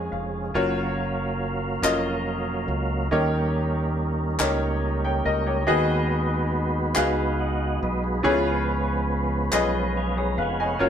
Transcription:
0.00 0.52 F3 medium
0.00 0.41 G#3 medium
0.00 0.51 G#3 medium
0.00 0.52 G#3 soft
0.00 0.41 C#4 medium
0.00 0.52 C#4 soft
0.00 0.53 C#4 medium
0.00 0.58 E4 soft
0.00 0.53 F4 medium
0.00 0.55 F4 medium
0.00 0.42 G#4 medium
0.00 0.51 G#4 medium
0.00 0.53 G#4 medium
0.00 0.42 A#4 medium
0.00 0.58 G#5 medium
0.12 0.52 F1 medium
0.12 0.52 F5 medium
0.54 1.79 F#1 loud
0.54 3.08 F#3 medium
0.54 3.08 A#3 medium
0.54 1.69 C#4 medium
0.54 3.08 C#4 medium
0.54 1.69 F4 medium
0.54 1.69 F#4 medium
0.54 1.70 A#4 medium
0.54 3.08 A#4 medium
0.54 1.70 C#5 loud
0.54 3.08 F5 medium
1.82 2.64 F1 medium
1.82 2.97 C#4 medium
1.82 2.97 F4 medium
1.82 2.98 F#4 medium
1.82 2.98 A#4 medium
1.82 2.98 D#5 medium
1.82 clap loud
2.68 3.08 C#2 medium
3.11 4.36 D#2 loud
3.11 4.36 D#3 medium
3.11 5.64 G3 medium
3.11 5.64 A#3 medium
3.11 4.26 C#4 medium
3.11 5.64 C#4 medium
3.11 4.26 D#4 medium
3.11 5.64 D#4 medium
3.11 4.26 G4 medium
3.11 5.64 A#4 medium
3.11 4.26 A#4 medium
3.11 4.26 C#5 loud
4.39 5.22 C#2 medium
4.39 5.54 C#4 medium
4.39 5.54 D#4 medium
4.39 4.82 G4 medium
4.39 4.82 A#4 medium
4.39 4.83 C#5 medium
4.39 clap medium
5.05 5.25 C#5 medium
5.05 5.25 G5 medium
5.25 5.65 C#2 medium
5.25 5.46 A#4 medium
5.25 5.46 D#5 medium
5.47 5.88 G4 medium
5.47 5.87 C#5 medium
5.67 6.92 D#2 loud
5.67 6.92 D#3 medium
5.67 8.20 G#3 medium
5.67 8.20 B3 medium
5.67 6.82 D#4 medium
5.67 8.20 D#4 medium
5.67 6.82 F#4 medium
5.67 8.20 F#4 medium
5.67 6.82 G#4 medium
5.67 6.82 B4 medium
5.67 7.35 B4 medium
5.67 6.82 D#5 loud
6.95 7.78 C#2 medium
6.95 8.10 D#4 medium
6.95 8.10 F#4 medium
6.95 8.10 G#4 medium
6.95 8.10 B4 medium
6.95 8.10 F5 medium
6.95 clap medium
7.39 7.80 D#5 medium
7.39 7.80 F#5 medium
7.83 8.21 B1 loud
7.83 8.03 B4 medium
7.83 8.02 D#5 medium
8.04 8.44 G#4 medium
8.04 8.23 B4 medium
8.23 9.49 C#2 loud
8.23 9.48 C#3 medium
8.23 10.77 F3 medium
8.23 10.77 G#3 medium
8.23 10.77 B3 medium
8.23 9.38 C#4 medium
8.23 10.77 C#4 medium
8.23 8.30 E4 medium
8.23 9.38 G#4 medium
8.23 10.77 B4 medium
8.23 9.39 B4 medium
8.23 9.38 C#5 loud
8.30 9.41 F4 medium
9.52 10.34 B1 medium
9.52 10.66 C#4 medium
9.52 10.67 F4 medium
9.52 9.95 G#4 medium
9.52 9.96 B4 medium
9.52 9.96 D#5 medium
9.52 clap medium
9.97 10.17 F5 medium
9.97 10.17 G#5 medium
10.17 10.38 G#4 medium
10.17 10.37 C#5 medium
10.17 10.38 A#5 medium
10.38 10.77 F1 medium
10.38 10.58 B4 medium
10.38 10.58 F5 medium
10.38 10.79 F#5 medium
10.38 10.60 G#5 medium
10.42 10.60 F5 medium
10.60 10.89 C#5 soft
10.60 10.89 D#5 medium
10.60 10.82 F5 medium
10.60 10.89 G#5 medium
10.79 10.89 F#1 medium
10.79 10.89 F#3 medium
10.79 10.89 A#3 medium
10.79 10.89 C#4 medium
10.79 10.89 F4 medium
10.79 10.89 F#4 medium
10.79 10.89 A#4 medium
10.79 10.89 C#5 medium
10.84 10.89 F5 medium

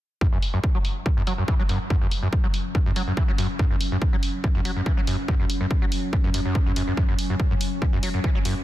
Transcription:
0.21 0.27 F#2 loud
0.21 8.64 F#3 medium
0.21 8.64 C#4 medium
0.21 kick loud
0.32 0.38 F#2 medium
0.42 open hi-hat medium
0.54 0.59 F#2 medium
0.64 kick loud
0.75 0.78 F#3 medium
0.85 open hi-hat medium
1.06 1.10 F#2 medium
1.06 kick loud
1.17 1.22 F#2 loud
1.27 1.33 F#3 medium
1.27 open hi-hat loud
1.38 1.44 F#2 medium
1.48 1.54 E3 medium
1.48 kick loud
1.59 1.63 F#3 loud
1.69 1.78 F#2 medium
1.69 open hi-hat medium
1.90 1.96 F#2 loud
1.90 kick loud
2.01 2.07 F#2 medium
2.11 open hi-hat loud
2.23 2.28 F#2 medium
2.33 kick loud
2.44 2.47 F#3 medium
2.54 open hi-hat medium
2.75 2.79 F#2 medium
2.75 kick loud
2.86 2.91 F#2 loud
2.96 3.02 F#3 medium
2.96 open hi-hat loud
3.07 3.13 F#2 medium
3.17 3.23 E3 medium
3.17 kick loud
3.28 3.32 F#3 loud
3.38 3.47 F#2 medium
3.38 open hi-hat medium
3.59 3.65 F#2 loud
3.59 kick loud
3.71 3.76 F#2 medium
3.81 open hi-hat loud
3.92 3.97 F#2 medium
4.02 kick loud
4.13 4.16 F#3 medium
4.23 open hi-hat medium
4.44 4.48 F#2 medium
4.44 kick loud
4.55 4.60 F#2 loud
4.65 4.71 F#3 medium
4.65 open hi-hat loud
4.76 4.82 F#2 medium
4.86 4.92 E3 medium
4.86 kick loud
4.97 5.01 F#3 loud
5.07 5.16 F#2 medium
5.07 open hi-hat medium
5.28 5.35 F#2 loud
5.28 kick loud
5.40 5.45 F#2 medium
5.50 open hi-hat loud
5.61 5.66 F#2 medium
5.71 kick loud
5.82 5.85 F#3 medium
5.92 open hi-hat medium
6.13 6.17 F#2 medium
6.13 kick loud
6.24 6.30 F#2 loud
6.34 6.40 F#2 medium
6.34 open hi-hat loud
6.45 6.57 F#2 medium
6.55 6.59 A2 loud
6.55 kick loud
6.66 6.72 F#2 loud
6.76 6.82 F#2 medium
6.76 open hi-hat medium
6.88 6.93 F#2 medium
6.97 7.04 F#2 loud
6.97 kick loud
7.09 7.14 F#2 medium
7.19 open hi-hat medium
7.30 7.35 F#2 medium
7.40 kick loud
7.51 7.54 F#2 loud
7.61 open hi-hat medium
7.82 7.86 F#2 medium
7.82 kick loud
7.93 7.99 F#2 loud
8.03 8.09 F#3 medium
8.03 open hi-hat loud
8.14 8.20 F#2 medium
8.24 8.30 E3 medium
8.24 kick loud
8.35 8.38 F#3 loud
8.45 8.54 F#2 medium
8.45 open hi-hat medium

